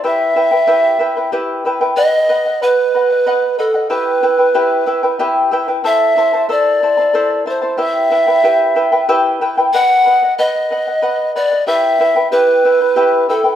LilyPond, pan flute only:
\new Staff \with { instrumentName = "Pan flute" } { \time 6/8 \key e \minor \tempo 4. = 62 e''2 r4 | dis''4 b'4. a'8 | b'2 r4 | e''4 d''4. c''8 |
e''2 r4 | fis''4 dis''4. d''8 | e''4 b'4. a'8 | }